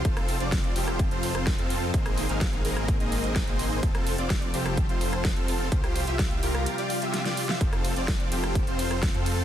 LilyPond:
<<
  \new Staff \with { instrumentName = "Supersaw synth" } { \time 4/4 \key f \major \tempo 4 = 127 <c' f' a'>8. <c' f' d''>8. <c' f' g'>8. <c' f' c''>4 <c' f' a'>8. | <bes c' ees' aes' c''>8. <bes c' ees' aes' f''>8. <bes c' ees' aes' bes'>8. <bes c' ees' aes' ees''>4 <bes c' ees' aes' c''>8. | <c' f' a'>8. <c' f' d''>8. <c' f' g'>8. <c' f' c''>4 <c' f' a'>8. | <f' g' c''>8. <f' g' e''>8. <f' g' bes'>8. <f' g' d''>8 <f' g' e''>8 <f' g' d''>8 <f' g' e''>16 |
<c' f' a'>8. <c' f' d''>8. <c' f' g'>8. <c' f' c''>4 <c' f' a'>8. | }
  \new Staff \with { instrumentName = "Analog synth pad" } { \time 4/4 \key f \major <f c' a'>1 | <aes bes>1 | <f a'>1 | <c g f'>1 |
<f c' a'>1 | }
  \new Staff \with { instrumentName = "Detuned saw bass" } { \clef bass \time 4/4 \key f \major f,,8. f,,8. f,,8. f,,4 f,8. | aes,,8. aes,,8. aes,,8. aes,,4 aes,,8. | f,,8. f,,8. f,,8. f,,4 f,,8. | c,8. c,8. c,8 r2 |
f,,8. f,,8. f,,8. f,,4 f,8. | }
  \new DrumStaff \with { instrumentName = "Drums" } \drummode { \time 4/4 <hh bd>16 <hh ss>16 hho16 hh16 <hh bd sn>16 hh16 hho16 <hh ss>16 <hh bd>16 hh16 hho16 <hh ss>16 <hh bd sn>16 hh16 hho8 | <hh bd>16 <hh ss>16 hho16 hh16 <hh bd sn>16 hh16 hho16 <hh ss>16 <hh bd>16 hh16 hho16 hh16 <hh bd sn>16 hh16 hho8 | <hh bd>16 <hh ss>16 hho16 hh16 <hh bd sn>16 hh16 hho16 <hh ss>16 <hh bd>16 hh16 hho16 <hh ss>16 <hh bd sn>16 hh16 hho8 | <hh bd>16 <hh ss>16 hho16 hh16 <hh bd sn>16 hh16 hho16 <hh ss>16 hh16 hh16 hho16 hh16 <hh sn>16 <hh sn>16 hho16 sn16 |
<hh bd>16 <hh ss>16 <hho cymr>16 hh16 <hh bd sn>16 hh16 <hho cymr>16 <hh ss>16 <hh bd>16 hh16 <hho cymr>16 <hh ss>16 <hh bd sn>16 hh16 <hho cymr>8 | }
>>